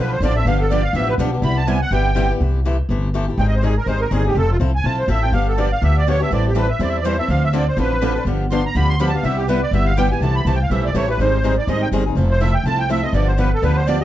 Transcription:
Already playing: B1 D3
0.00 F3 C4 D4 A4 B4
0.12 C5
0.20 A1 D3 F3 C4 D4 A4 D5
0.36 C4 D4 A4 E5
0.45 G1 D3 F3 B3 D4 G4 F5
0.61 A4
0.70 D3 F3 B3 D4 G4 D5
0.83 F5
0.93 A1 D3 F3 B3 D4 G4 E5
1.08 B4
1.18 B1 D3 F3 B3 D4 G4
1.33 B3 D4 G4
1.42 C2 C3 G3 B3 E4 G4 B5
1.57 A5
1.67 C3 G3 B3 E4 G4 G#5
1.82 F#5
1.91 G1 C3 G3 B3 E4 G4 G5
2.15 C3 G3 B3 E4 G4
2.29 B3 E4 G4
2.40 C2 C3 E3 A3 E4 G4
2.65 C3 E3 A3 E4 G4
2.89 G1 C3 E3 A3 E4 G4
3.14 C3 E3 A3 E4 G4
3.28 A3 E4 G4
3.38 G#1 D#3 G3 C4 D#4 G#4 G5
3.48 D#5
3.56 C5
3.62 D#3 G3 C4 D#4 G#4
3.77 A#4
3.86 G#1 D#3 G3 C4 D#4 G#4 C5
4.01 A#4
4.11 G1 D#3 G3 C4 D#4 G#4
4.24 C4 D#4 G4 G#4
4.35 F1 F3 C4 E4 A4
4.51 F4
4.59 C2 F3 C4 E4 A4
4.76 G#5
4.84 B1 F3 C4 E4 A4 A5
4.99 C5
5.08 A1 F3 C4 E4 A4 E5
5.22 C4 E4 A4 G5
5.32 G1 D3 F3 B3 D4 G4 F5
5.48 A4
5.58 D3 F3 B3 D4 G4 D5
5.72 F5
5.82 D2 D3 F3 B3 D4 G4 E5
5.98 D5
6.07 D3 F3 B3 D4 G4 C#5
6.20 B3 D4 G4 E5
6.31 A1 E3 G3 C4 E4 A4 D5
6.48 G4
6.55 E3 G3 C4 E4 A4 B4
6.70 E5
6.79 E2 E3 G3 C4 E4 A4 D5
6.89 E5
6.97 D5
7.04 E3 G3 C4 E4 A4 C5
7.18 C4 E4 A4 E5
7.28 D2 D3 F3 C4 D4 A4 F5
7.44 E5
7.53 D3 F3 C4 D4 A4 D5
7.68 C5
7.77 A1 D3 F3 C4 D4 A4 B4
8.01 D3 F3 C4 D4 A4
8.15 C4 D4 A4
8.25 G1 D3 F3 B3 D4 G4
8.51 D3 F3 B3 D4 G4 C6
8.66 A#5
8.75 D2 D3 F3 B3 D4 G4 B5
8.89 C6
9.00 D3 F3 B3 D4 G4 B5
9.08 A5
9.14 B3 D4 G4 F5
9.23 C2 C3 G3 B3 E4 G4 E5
9.37 G4
9.48 C3 G3 B3 E4 G4 B4
9.62 D5
9.71 G1 C3 G3 B3 E4 G4 E5
9.86 F5
9.97 C3 G3 B3 E4 G4 G5
10.11 B3 E4 G4 G#5
10.21 C2 C3 E3 G3 A3 C4 E4 G4 A4 A5
10.36 B5
10.45 C2 C3 E3 G3 A3 C4 E4 G4 A4 A5
10.55 G5
10.62 F5
10.70 B1 C3 E3 G3 A3 C4 E4 G4 A4 E5
10.85 D5
10.94 A1 C3 E3 G3 A3 C4 E4 G4 A4 C#5
11.08 A3 E4 G4 B4
11.18 G#1 D#3 G3 C4 D#4 G#4 C5
11.44 D#3 G3 C4 D#4 G#4
11.58 D5
11.67 G#1 D#3 G3 C4 D#4 G#4 D#5
11.82 G5
11.91 G1 D#3 G3 C4 D#4 G#4
12.06 C4 D#4 G#4
12.15 F1 F3 A3 C4 E4 A4
12.31 C5
12.41 F3 A3 C4 E4 A4 E5
12.54 G5
12.64 C2 F3 A3 C4 E4 A4 A5
12.79 G5
12.89 F3 A3 C4 E4 A4 E5
13.03 C4 E4 A4 D#5
13.13 G1 D3 F3 B3 D4 G4 D5
13.28 C5
13.38 D3 F3 B3 D4 G4 B4
13.54 A4
13.62 D2 D3 F3 B3 D4 G4 B4
13.76 C5
13.87 D3 F3 B3 D4 G4 D5
14.01 G4 D#5

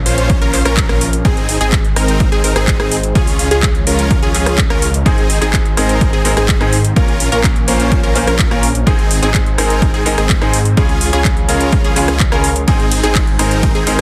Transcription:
Already playing: F3 A#3 C#4
0.06 A#1 C#4 F4 C5, open hi-hat
0.18 closed hi-hat
0.30 kick, closed hi-hat
0.42 A#1 C#4 F4 A#4, closed hi-hat
0.53 A#1 C#4 F4 C5, clap, open hi-hat
0.65 A#1 C#4 F4 A#4, cross-stick, closed hi-hat
0.77 kick, clap, closed hi-hat
0.89 A#1 C#4 F4 A#4, cross-stick, closed hi-hat
1.01 open hi-hat
1.13 closed hi-hat
1.25 G#1 D#3 G#3 C4 D#4 G#4, kick, closed hi-hat
1.37 closed hi-hat
1.49 open hi-hat
1.61 G#1 C4 D#4 G#4, closed hi-hat
1.72 kick, clap, closed hi-hat
1.85 closed hi-hat
1.96 G#1 C4 D#4 A#4, cross-stick, open hi-hat
2.08 closed hi-hat
2.20 kick, closed hi-hat
2.32 G#1 C4 D#4 G#4, closed hi-hat
2.44 G#1 C4 D#4 A#4, open hi-hat
2.56 G#1 C4 D#4 G#4, cross-stick, closed hi-hat
2.68 kick, clap, closed hi-hat
2.80 G#1 C4 D#4 G#4, cross-stick, closed hi-hat
2.92 open hi-hat
3.03 closed hi-hat
3.15 C#2 F3 C#4 F4 G#4, kick, closed hi-hat
3.27 open hi-hat
3.39 open hi-hat
3.51 C#2 C#4 F4 G#4, closed hi-hat
3.63 kick, clap, closed hi-hat
3.75 closed hi-hat
3.87 C#2 C#4 F4 A#4, open hi-hat
3.99 closed hi-hat
4.11 kick, closed hi-hat
4.22 C#2 C#4 F4 G#4, closed hi-hat
4.34 C#2 C#4 F4 G#4, clap, open hi-hat
4.46 cross-stick, closed hi-hat
4.58 kick, clap, closed hi-hat
4.70 C#2 C#4 F4 A#4, cross-stick, closed hi-hat
4.82 open hi-hat
4.94 closed hi-hat
5.05 G#1 G#2 D#3 G#3 C4 D#4 G#4, kick, closed hi-hat
5.18 closed hi-hat
5.30 open hi-hat
5.41 G#1 G#2 G#3 C4 D#4 G#4, closed hi-hat
5.53 kick, clap, closed hi-hat
5.65 closed hi-hat
5.77 G#1 G#2 G#3 C4 D#4 G#4 A#4, cross-stick, open hi-hat
5.89 closed hi-hat
6.01 kick, closed hi-hat
6.13 G#1 C4 D#4 G#4, closed hi-hat
6.24 G#1 G#2 G#3 C4 D#4 G#4 A#4, open hi-hat
6.37 G#1 C4 D#4 G#4, cross-stick, closed hi-hat
6.49 kick, clap, closed hi-hat
6.60 G#2 G#3 C4 D#4 G#4, cross-stick, closed hi-hat
6.73 open hi-hat
6.85 closed hi-hat
6.96 A#1 A#2 F3 A#3 C#4 F4 A#4, kick, closed hi-hat
7.08 closed hi-hat
7.20 open hi-hat
7.31 A#1 A#2 A#3 C#4 F4 A#4, closed hi-hat
7.44 kick, clap, closed hi-hat
7.56 closed hi-hat
7.67 A#1 A#2 A#3 C#4 F4 A#4 C5, open hi-hat
7.80 closed hi-hat
7.92 kick, closed hi-hat
8.03 A#1 C#4 F4 A#4, closed hi-hat
8.15 A#1 A#2 A#3 C#4 F4 A#4 C5, clap, open hi-hat
8.27 A#1 C#4 F4 A#4, cross-stick, closed hi-hat
8.39 kick, clap, closed hi-hat
8.50 A#1 A#2 A#3 C#4 F4 A#4, cross-stick, closed hi-hat
8.63 open hi-hat
8.75 closed hi-hat
8.86 G#1 G#2 D#3 G#3 C4 D#4 G#4, kick, closed hi-hat
8.99 closed hi-hat
9.11 open hi-hat
9.22 G#1 G#2 G#3 C4 D#4 G#4, closed hi-hat
9.34 kick, clap, closed hi-hat
9.46 closed hi-hat
9.58 G#1 G#2 G#3 C4 D#4 G#4 A#4, cross-stick, open hi-hat
9.70 closed hi-hat
9.82 kick, closed hi-hat
9.94 G#1 C4 D#4 G#4, closed hi-hat
10.05 G#1 G#2 G#3 C4 D#4 G#4 A#4, open hi-hat
10.18 G#1 C4 D#4 G#4, cross-stick, closed hi-hat
10.30 kick, clap, closed hi-hat
10.41 G#2 G#3 C4 D#4 G#4, cross-stick, closed hi-hat
10.53 open hi-hat
10.65 closed hi-hat
10.77 C#2 C#3 F3 G#3 C#4 F4 G#4, kick, closed hi-hat
10.89 closed hi-hat
11.01 open hi-hat
11.12 C#2 C#3 G#3 C#4 F4 G#4, closed hi-hat
11.25 kick, clap, closed hi-hat
11.37 closed hi-hat
11.48 C#2 C#3 G#3 C#4 F4 G#4 A#4, open hi-hat
11.61 closed hi-hat
11.72 kick, closed hi-hat
11.84 C#2 C#4 F4 G#4, closed hi-hat
11.96 C#2 C#3 G#3 C#4 F4 G#4, clap, open hi-hat
12.08 cross-stick, closed hi-hat
12.20 kick, clap, closed hi-hat
12.32 C#2 C#3 G#3 C#4 F4 G#4 A#4, cross-stick, closed hi-hat
12.44 open hi-hat
12.56 closed hi-hat
12.67 G#1 G#2 D#3 G#3 C4 D#4 G#4, kick, closed hi-hat, ride
12.80 closed hi-hat
12.92 open hi-hat, ride
13.03 G#1 G#2 G#3 C4 D#4 G#4, closed hi-hat
13.15 kick, clap, closed hi-hat, ride
13.27 closed hi-hat
13.39 G#1 G#2 G#3 C4 D#4 G#4 A#4, cross-stick, open hi-hat, ride
13.51 closed hi-hat
13.63 kick, closed hi-hat, ride
13.75 G#1 C4 D#4 G#4, closed hi-hat
13.86 G#1 G#2 G#3 C4 D#4 G#4 A#4, open hi-hat, ride

